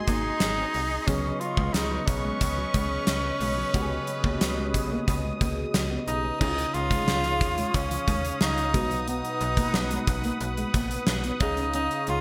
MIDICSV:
0, 0, Header, 1, 8, 480
1, 0, Start_track
1, 0, Tempo, 666667
1, 774, Time_signature, 4, 2, 24, 8
1, 8790, End_track
2, 0, Start_track
2, 0, Title_t, "Analog synth pad"
2, 0, Program_c, 0, 89
2, 0, Note_on_c, 0, 68, 81
2, 0, Note_on_c, 0, 75, 73
2, 0, Note_on_c, 0, 84, 91
2, 751, Note_off_c, 0, 68, 0
2, 751, Note_off_c, 0, 84, 0
2, 779, Note_on_c, 0, 71, 84
2, 780, Note_on_c, 0, 85, 88
2, 2678, Note_off_c, 0, 85, 0
2, 2700, Note_on_c, 0, 87, 92
2, 4583, Note_off_c, 0, 75, 0
2, 4588, Note_off_c, 0, 71, 0
2, 4598, Note_off_c, 0, 87, 0
2, 4616, Note_on_c, 0, 73, 77
2, 4619, Note_on_c, 0, 77, 76
2, 4619, Note_on_c, 0, 87, 86
2, 6278, Note_off_c, 0, 73, 0
2, 6280, Note_off_c, 0, 77, 0
2, 6296, Note_on_c, 0, 78, 73
2, 6298, Note_on_c, 0, 71, 82
2, 8196, Note_off_c, 0, 78, 0
2, 8197, Note_off_c, 0, 71, 0
2, 8213, Note_on_c, 0, 73, 85
2, 8213, Note_on_c, 0, 77, 73
2, 8790, Note_off_c, 0, 73, 0
2, 8790, Note_off_c, 0, 77, 0
2, 8790, Note_off_c, 0, 87, 0
2, 8790, End_track
3, 0, Start_track
3, 0, Title_t, "FM electric piano"
3, 0, Program_c, 1, 5
3, 0, Control_c, 1, 64, 127
3, 0, Note_on_c, 1, 44, 58
3, 0, Note_on_c, 1, 60, 64
3, 0, Note_on_c, 1, 63, 56
3, 0, Note_on_c, 1, 66, 58
3, 0, Note_on_c, 1, 68, 67
3, 501, Note_off_c, 1, 60, 0
3, 504, Note_off_c, 1, 63, 0
3, 507, Note_off_c, 1, 66, 0
3, 510, Note_off_c, 1, 68, 0
3, 768, Note_on_c, 1, 59, 58
3, 776, Note_on_c, 1, 61, 51
3, 777, Note_on_c, 1, 49, 58
3, 780, Note_on_c, 1, 54, 54
3, 785, Control_c, 1, 64, 0
3, 786, Note_on_c, 1, 68, 67
3, 788, Note_off_c, 1, 44, 0
3, 922, Control_c, 1, 64, 127
3, 1467, Note_off_c, 1, 49, 0
3, 2662, Note_off_c, 1, 59, 0
3, 2666, Note_off_c, 1, 61, 0
3, 2668, Note_off_c, 1, 54, 0
3, 2671, Note_off_c, 1, 68, 0
3, 2688, Note_on_c, 1, 59, 67
3, 2694, Note_on_c, 1, 61, 62
3, 2698, Note_on_c, 1, 49, 69
3, 2699, Note_on_c, 1, 66, 66
3, 2705, Note_on_c, 1, 67, 65
3, 2747, Note_off_c, 1, 67, 0
3, 2753, Note_on_c, 1, 68, 76
3, 3388, Note_off_c, 1, 49, 0
3, 4582, Note_off_c, 1, 59, 0
3, 4586, Note_off_c, 1, 61, 0
3, 4588, Note_off_c, 1, 66, 0
3, 4603, Note_on_c, 1, 61, 60
3, 4610, Note_on_c, 1, 63, 56
3, 4611, Note_on_c, 1, 49, 61
3, 4612, Note_off_c, 1, 68, 0
3, 4615, Note_on_c, 1, 64, 45
3, 4620, Note_on_c, 1, 68, 65
3, 4625, Control_c, 1, 64, 0
3, 4661, Note_off_c, 1, 64, 0
3, 4662, Note_on_c, 1, 65, 55
3, 4767, Control_c, 1, 64, 127
3, 5304, Note_off_c, 1, 49, 0
3, 6260, Note_off_c, 1, 61, 0
3, 6263, Note_off_c, 1, 63, 0
3, 6268, Note_off_c, 1, 68, 0
3, 6288, Note_on_c, 1, 59, 67
3, 6289, Note_off_c, 1, 65, 0
3, 6293, Note_on_c, 1, 63, 57
3, 6295, Note_on_c, 1, 47, 58
3, 6297, Note_on_c, 1, 66, 59
3, 6304, Control_c, 1, 64, 0
3, 6306, Note_on_c, 1, 71, 66
3, 6448, Control_c, 1, 64, 127
3, 6986, Note_off_c, 1, 47, 0
3, 8182, Note_off_c, 1, 59, 0
3, 8185, Note_off_c, 1, 63, 0
3, 8187, Note_off_c, 1, 66, 0
3, 8191, Note_off_c, 1, 71, 0
3, 8209, Note_on_c, 1, 61, 62
3, 8216, Note_on_c, 1, 63, 57
3, 8218, Note_on_c, 1, 49, 63
3, 8219, Note_on_c, 1, 77, 57
3, 8223, Control_c, 1, 64, 0
3, 8225, Note_on_c, 1, 68, 73
3, 8367, Control_c, 1, 64, 127
3, 8790, Note_off_c, 1, 49, 0
3, 8790, Note_off_c, 1, 61, 0
3, 8790, Note_off_c, 1, 63, 0
3, 8790, Note_off_c, 1, 68, 0
3, 8790, Note_off_c, 1, 77, 0
3, 8790, End_track
4, 0, Start_track
4, 0, Title_t, "Tenor saxophone"
4, 0, Program_c, 2, 66
4, 51, Note_on_c, 2, 63, 105
4, 771, Note_on_c, 2, 61, 83
4, 782, Note_off_c, 2, 63, 0
4, 1008, Note_on_c, 2, 65, 92
4, 1019, Note_off_c, 2, 61, 0
4, 1246, Note_on_c, 2, 63, 86
4, 1257, Note_off_c, 2, 65, 0
4, 1489, Note_on_c, 2, 61, 93
4, 1499, Note_off_c, 2, 63, 0
4, 4131, Note_off_c, 2, 61, 0
4, 4374, Note_on_c, 2, 63, 95
4, 4597, Note_off_c, 2, 63, 0
4, 4616, Note_on_c, 2, 63, 99
4, 4854, Note_on_c, 2, 65, 116
4, 4864, Note_off_c, 2, 63, 0
4, 5578, Note_on_c, 2, 61, 94
4, 5588, Note_off_c, 2, 65, 0
4, 6054, Note_off_c, 2, 61, 0
4, 6059, Note_on_c, 2, 63, 98
4, 6508, Note_off_c, 2, 63, 0
4, 6542, Note_on_c, 2, 63, 92
4, 7469, Note_off_c, 2, 63, 0
4, 8219, Note_on_c, 2, 63, 91
4, 8440, Note_off_c, 2, 63, 0
4, 8461, Note_on_c, 2, 63, 91
4, 8681, Note_off_c, 2, 63, 0
4, 8706, Note_on_c, 2, 65, 91
4, 8790, Note_off_c, 2, 65, 0
4, 8790, End_track
5, 0, Start_track
5, 0, Title_t, "Clean electric guitar"
5, 0, Program_c, 3, 27
5, 54, Note_on_c, 3, 58, 66
5, 133, Note_off_c, 3, 58, 0
5, 412, Note_on_c, 3, 60, 66
5, 492, Note_off_c, 3, 60, 0
5, 655, Note_on_c, 3, 63, 70
5, 734, Note_off_c, 3, 63, 0
5, 773, Note_on_c, 3, 61, 90
5, 853, Note_off_c, 3, 61, 0
5, 1136, Note_on_c, 3, 56, 68
5, 1215, Note_off_c, 3, 56, 0
5, 1376, Note_on_c, 3, 54, 70
5, 1455, Note_off_c, 3, 54, 0
5, 1615, Note_on_c, 3, 56, 75
5, 1694, Note_off_c, 3, 56, 0
5, 1853, Note_on_c, 3, 54, 67
5, 1933, Note_off_c, 3, 54, 0
5, 1973, Note_on_c, 3, 56, 85
5, 2052, Note_off_c, 3, 56, 0
5, 2455, Note_on_c, 3, 56, 72
5, 2534, Note_off_c, 3, 56, 0
5, 2574, Note_on_c, 3, 54, 70
5, 2653, Note_off_c, 3, 54, 0
5, 2694, Note_on_c, 3, 56, 81
5, 2774, Note_off_c, 3, 56, 0
5, 3057, Note_on_c, 3, 58, 68
5, 3136, Note_off_c, 3, 58, 0
5, 3296, Note_on_c, 3, 56, 70
5, 3375, Note_off_c, 3, 56, 0
5, 3541, Note_on_c, 3, 58, 73
5, 3618, Note_off_c, 3, 58, 0
5, 3780, Note_on_c, 3, 56, 67
5, 3857, Note_off_c, 3, 56, 0
5, 3897, Note_on_c, 3, 58, 68
5, 3976, Note_off_c, 3, 58, 0
5, 4253, Note_on_c, 3, 59, 67
5, 4333, Note_off_c, 3, 59, 0
5, 4494, Note_on_c, 3, 61, 63
5, 4573, Note_off_c, 3, 61, 0
5, 4614, Note_on_c, 3, 61, 92
5, 4693, Note_off_c, 3, 61, 0
5, 4976, Note_on_c, 3, 56, 66
5, 5055, Note_off_c, 3, 56, 0
5, 5215, Note_on_c, 3, 53, 72
5, 5294, Note_off_c, 3, 53, 0
5, 5458, Note_on_c, 3, 56, 70
5, 5536, Note_off_c, 3, 56, 0
5, 5696, Note_on_c, 3, 53, 67
5, 5775, Note_off_c, 3, 53, 0
5, 5813, Note_on_c, 3, 56, 82
5, 5893, Note_off_c, 3, 56, 0
5, 6296, Note_on_c, 3, 56, 79
5, 6375, Note_off_c, 3, 56, 0
5, 6416, Note_on_c, 3, 54, 69
5, 6495, Note_off_c, 3, 54, 0
5, 6536, Note_on_c, 3, 59, 83
5, 6615, Note_off_c, 3, 59, 0
5, 6897, Note_on_c, 3, 58, 67
5, 6975, Note_off_c, 3, 58, 0
5, 7139, Note_on_c, 3, 56, 72
5, 7216, Note_off_c, 3, 56, 0
5, 7378, Note_on_c, 3, 58, 84
5, 7456, Note_off_c, 3, 58, 0
5, 7617, Note_on_c, 3, 56, 72
5, 7695, Note_off_c, 3, 56, 0
5, 7736, Note_on_c, 3, 58, 67
5, 7815, Note_off_c, 3, 58, 0
5, 8097, Note_on_c, 3, 59, 66
5, 8175, Note_off_c, 3, 59, 0
5, 8334, Note_on_c, 3, 61, 69
5, 8414, Note_off_c, 3, 61, 0
5, 8456, Note_on_c, 3, 61, 99
5, 8535, Note_off_c, 3, 61, 0
5, 8790, End_track
6, 0, Start_track
6, 0, Title_t, "FM bass"
6, 0, Program_c, 4, 39
6, 56, Note_on_c, 4, 32, 90
6, 228, Note_off_c, 4, 32, 0
6, 296, Note_on_c, 4, 32, 84
6, 468, Note_off_c, 4, 32, 0
6, 539, Note_on_c, 4, 36, 87
6, 710, Note_off_c, 4, 36, 0
6, 776, Note_on_c, 4, 37, 94
6, 948, Note_off_c, 4, 37, 0
6, 1133, Note_on_c, 4, 37, 91
6, 1220, Note_off_c, 4, 37, 0
6, 1259, Note_on_c, 4, 37, 103
6, 1430, Note_off_c, 4, 37, 0
6, 1495, Note_on_c, 4, 35, 89
6, 1668, Note_off_c, 4, 35, 0
6, 1738, Note_on_c, 4, 37, 94
6, 1910, Note_off_c, 4, 37, 0
6, 1977, Note_on_c, 4, 37, 96
6, 2149, Note_off_c, 4, 37, 0
6, 2212, Note_on_c, 4, 37, 94
6, 2386, Note_off_c, 4, 37, 0
6, 2449, Note_on_c, 4, 35, 87
6, 2624, Note_off_c, 4, 35, 0
6, 2696, Note_on_c, 4, 37, 102
6, 2868, Note_off_c, 4, 37, 0
6, 3054, Note_on_c, 4, 37, 91
6, 3140, Note_off_c, 4, 37, 0
6, 3172, Note_on_c, 4, 37, 92
6, 3417, Note_on_c, 4, 35, 83
6, 3428, Note_off_c, 4, 37, 0
6, 3589, Note_off_c, 4, 35, 0
6, 3657, Note_on_c, 4, 37, 101
6, 3829, Note_off_c, 4, 37, 0
6, 3896, Note_on_c, 4, 37, 84
6, 4069, Note_off_c, 4, 37, 0
6, 4134, Note_on_c, 4, 37, 97
6, 4307, Note_off_c, 4, 37, 0
6, 4373, Note_on_c, 4, 35, 93
6, 4546, Note_off_c, 4, 35, 0
6, 4616, Note_on_c, 4, 37, 113
6, 4788, Note_off_c, 4, 37, 0
6, 4857, Note_on_c, 4, 37, 91
6, 5029, Note_off_c, 4, 37, 0
6, 5097, Note_on_c, 4, 37, 104
6, 5337, Note_on_c, 4, 39, 93
6, 5348, Note_off_c, 4, 37, 0
6, 5509, Note_off_c, 4, 39, 0
6, 5576, Note_on_c, 4, 37, 108
6, 5748, Note_off_c, 4, 37, 0
6, 5815, Note_on_c, 4, 39, 87
6, 5988, Note_off_c, 4, 39, 0
6, 6058, Note_on_c, 4, 37, 103
6, 6296, Note_on_c, 4, 35, 94
6, 6306, Note_off_c, 4, 37, 0
6, 6641, Note_off_c, 4, 35, 0
6, 6776, Note_on_c, 4, 35, 101
6, 6948, Note_off_c, 4, 35, 0
6, 7017, Note_on_c, 4, 35, 105
6, 7189, Note_off_c, 4, 35, 0
6, 7255, Note_on_c, 4, 35, 88
6, 7428, Note_off_c, 4, 35, 0
6, 7494, Note_on_c, 4, 35, 101
6, 7667, Note_off_c, 4, 35, 0
6, 7734, Note_on_c, 4, 34, 83
6, 7907, Note_off_c, 4, 34, 0
6, 7974, Note_on_c, 4, 35, 101
6, 8147, Note_off_c, 4, 35, 0
6, 8214, Note_on_c, 4, 37, 96
6, 8560, Note_off_c, 4, 37, 0
6, 8698, Note_on_c, 4, 37, 93
6, 8790, Note_off_c, 4, 37, 0
6, 8790, End_track
7, 0, Start_track
7, 0, Title_t, "Muted clean electric guitar strokes"
7, 535, Note_on_c, 9, 29, 38
7, 607, Note_off_c, 9, 29, 0
7, 1013, Note_on_c, 9, 29, 43
7, 1085, Note_off_c, 9, 29, 0
7, 1494, Note_on_c, 9, 29, 42
7, 1566, Note_off_c, 9, 29, 0
7, 1732, Note_on_c, 9, 29, 42
7, 1804, Note_off_c, 9, 29, 0
7, 2938, Note_on_c, 9, 29, 42
7, 3010, Note_off_c, 9, 29, 0
7, 3661, Note_on_c, 9, 29, 41
7, 3733, Note_off_c, 9, 29, 0
7, 4375, Note_on_c, 9, 29, 40
7, 4447, Note_off_c, 9, 29, 0
7, 4857, Note_on_c, 9, 29, 42
7, 4929, Note_off_c, 9, 29, 0
7, 5335, Note_on_c, 9, 29, 41
7, 5407, Note_off_c, 9, 29, 0
7, 6777, Note_on_c, 9, 29, 46
7, 6849, Note_off_c, 9, 29, 0
7, 7498, Note_on_c, 9, 29, 41
7, 7570, Note_off_c, 9, 29, 0
7, 8217, Note_on_c, 9, 29, 41
7, 8289, Note_off_c, 9, 29, 0
7, 8697, Note_on_c, 9, 29, 45
7, 8769, Note_off_c, 9, 29, 0
7, 8790, End_track
8, 0, Start_track
8, 0, Title_t, "Drums"
8, 53, Note_on_c, 9, 42, 72
8, 55, Note_on_c, 9, 36, 84
8, 125, Note_off_c, 9, 42, 0
8, 127, Note_off_c, 9, 36, 0
8, 290, Note_on_c, 9, 38, 113
8, 290, Note_on_c, 9, 42, 82
8, 362, Note_off_c, 9, 38, 0
8, 362, Note_off_c, 9, 42, 0
8, 533, Note_on_c, 9, 46, 70
8, 605, Note_off_c, 9, 46, 0
8, 775, Note_on_c, 9, 36, 91
8, 777, Note_on_c, 9, 42, 84
8, 847, Note_off_c, 9, 36, 0
8, 849, Note_off_c, 9, 42, 0
8, 1014, Note_on_c, 9, 42, 55
8, 1086, Note_off_c, 9, 42, 0
8, 1132, Note_on_c, 9, 36, 85
8, 1204, Note_off_c, 9, 36, 0
8, 1254, Note_on_c, 9, 42, 84
8, 1256, Note_on_c, 9, 38, 91
8, 1326, Note_off_c, 9, 42, 0
8, 1328, Note_off_c, 9, 38, 0
8, 1495, Note_on_c, 9, 36, 93
8, 1495, Note_on_c, 9, 42, 63
8, 1567, Note_off_c, 9, 36, 0
8, 1567, Note_off_c, 9, 42, 0
8, 1734, Note_on_c, 9, 42, 76
8, 1735, Note_on_c, 9, 36, 84
8, 1806, Note_off_c, 9, 42, 0
8, 1807, Note_off_c, 9, 36, 0
8, 1973, Note_on_c, 9, 42, 68
8, 1975, Note_on_c, 9, 36, 87
8, 2045, Note_off_c, 9, 42, 0
8, 2047, Note_off_c, 9, 36, 0
8, 2210, Note_on_c, 9, 38, 108
8, 2210, Note_on_c, 9, 42, 83
8, 2282, Note_off_c, 9, 38, 0
8, 2282, Note_off_c, 9, 42, 0
8, 2452, Note_on_c, 9, 46, 66
8, 2524, Note_off_c, 9, 46, 0
8, 2694, Note_on_c, 9, 36, 99
8, 2695, Note_on_c, 9, 42, 80
8, 2766, Note_off_c, 9, 36, 0
8, 2767, Note_off_c, 9, 42, 0
8, 2932, Note_on_c, 9, 42, 57
8, 3004, Note_off_c, 9, 42, 0
8, 3052, Note_on_c, 9, 36, 85
8, 3124, Note_off_c, 9, 36, 0
8, 3175, Note_on_c, 9, 42, 86
8, 3177, Note_on_c, 9, 38, 102
8, 3247, Note_off_c, 9, 42, 0
8, 3249, Note_off_c, 9, 38, 0
8, 3415, Note_on_c, 9, 36, 92
8, 3417, Note_on_c, 9, 42, 63
8, 3487, Note_off_c, 9, 36, 0
8, 3489, Note_off_c, 9, 42, 0
8, 3656, Note_on_c, 9, 36, 84
8, 3656, Note_on_c, 9, 42, 74
8, 3728, Note_off_c, 9, 36, 0
8, 3728, Note_off_c, 9, 42, 0
8, 3895, Note_on_c, 9, 36, 92
8, 3895, Note_on_c, 9, 42, 70
8, 3967, Note_off_c, 9, 36, 0
8, 3967, Note_off_c, 9, 42, 0
8, 4134, Note_on_c, 9, 38, 110
8, 4134, Note_on_c, 9, 42, 84
8, 4206, Note_off_c, 9, 38, 0
8, 4206, Note_off_c, 9, 42, 0
8, 4375, Note_on_c, 9, 42, 67
8, 4447, Note_off_c, 9, 42, 0
8, 4615, Note_on_c, 9, 36, 99
8, 4615, Note_on_c, 9, 49, 91
8, 4687, Note_off_c, 9, 36, 0
8, 4687, Note_off_c, 9, 49, 0
8, 4740, Note_on_c, 9, 42, 48
8, 4812, Note_off_c, 9, 42, 0
8, 4855, Note_on_c, 9, 42, 58
8, 4927, Note_off_c, 9, 42, 0
8, 4973, Note_on_c, 9, 36, 89
8, 4980, Note_on_c, 9, 42, 57
8, 5045, Note_off_c, 9, 36, 0
8, 5052, Note_off_c, 9, 42, 0
8, 5096, Note_on_c, 9, 38, 99
8, 5168, Note_off_c, 9, 38, 0
8, 5213, Note_on_c, 9, 42, 54
8, 5285, Note_off_c, 9, 42, 0
8, 5335, Note_on_c, 9, 36, 92
8, 5336, Note_on_c, 9, 42, 63
8, 5407, Note_off_c, 9, 36, 0
8, 5408, Note_off_c, 9, 42, 0
8, 5455, Note_on_c, 9, 42, 50
8, 5527, Note_off_c, 9, 42, 0
8, 5574, Note_on_c, 9, 42, 81
8, 5575, Note_on_c, 9, 36, 87
8, 5646, Note_off_c, 9, 42, 0
8, 5647, Note_off_c, 9, 36, 0
8, 5695, Note_on_c, 9, 42, 57
8, 5767, Note_off_c, 9, 42, 0
8, 5815, Note_on_c, 9, 36, 87
8, 5815, Note_on_c, 9, 42, 73
8, 5887, Note_off_c, 9, 36, 0
8, 5887, Note_off_c, 9, 42, 0
8, 5937, Note_on_c, 9, 42, 52
8, 6009, Note_off_c, 9, 42, 0
8, 6053, Note_on_c, 9, 38, 116
8, 6125, Note_off_c, 9, 38, 0
8, 6175, Note_on_c, 9, 42, 49
8, 6247, Note_off_c, 9, 42, 0
8, 6295, Note_on_c, 9, 36, 105
8, 6295, Note_on_c, 9, 42, 69
8, 6367, Note_off_c, 9, 36, 0
8, 6367, Note_off_c, 9, 42, 0
8, 6415, Note_on_c, 9, 42, 46
8, 6487, Note_off_c, 9, 42, 0
8, 6534, Note_on_c, 9, 42, 82
8, 6606, Note_off_c, 9, 42, 0
8, 6657, Note_on_c, 9, 42, 49
8, 6729, Note_off_c, 9, 42, 0
8, 6773, Note_on_c, 9, 42, 60
8, 6845, Note_off_c, 9, 42, 0
8, 6891, Note_on_c, 9, 36, 82
8, 6892, Note_on_c, 9, 42, 57
8, 6963, Note_off_c, 9, 36, 0
8, 6964, Note_off_c, 9, 42, 0
8, 7012, Note_on_c, 9, 38, 100
8, 7084, Note_off_c, 9, 38, 0
8, 7132, Note_on_c, 9, 42, 56
8, 7204, Note_off_c, 9, 42, 0
8, 7253, Note_on_c, 9, 42, 66
8, 7254, Note_on_c, 9, 36, 96
8, 7325, Note_off_c, 9, 42, 0
8, 7326, Note_off_c, 9, 36, 0
8, 7371, Note_on_c, 9, 42, 49
8, 7443, Note_off_c, 9, 42, 0
8, 7492, Note_on_c, 9, 42, 78
8, 7564, Note_off_c, 9, 42, 0
8, 7614, Note_on_c, 9, 42, 58
8, 7686, Note_off_c, 9, 42, 0
8, 7732, Note_on_c, 9, 42, 75
8, 7734, Note_on_c, 9, 36, 88
8, 7804, Note_off_c, 9, 42, 0
8, 7806, Note_off_c, 9, 36, 0
8, 7854, Note_on_c, 9, 42, 52
8, 7926, Note_off_c, 9, 42, 0
8, 7968, Note_on_c, 9, 38, 117
8, 8040, Note_off_c, 9, 38, 0
8, 8090, Note_on_c, 9, 42, 52
8, 8162, Note_off_c, 9, 42, 0
8, 8210, Note_on_c, 9, 42, 71
8, 8212, Note_on_c, 9, 36, 108
8, 8282, Note_off_c, 9, 42, 0
8, 8284, Note_off_c, 9, 36, 0
8, 8331, Note_on_c, 9, 42, 49
8, 8403, Note_off_c, 9, 42, 0
8, 8449, Note_on_c, 9, 42, 86
8, 8521, Note_off_c, 9, 42, 0
8, 8575, Note_on_c, 9, 42, 50
8, 8647, Note_off_c, 9, 42, 0
8, 8689, Note_on_c, 9, 42, 58
8, 8761, Note_off_c, 9, 42, 0
8, 8790, End_track
0, 0, End_of_file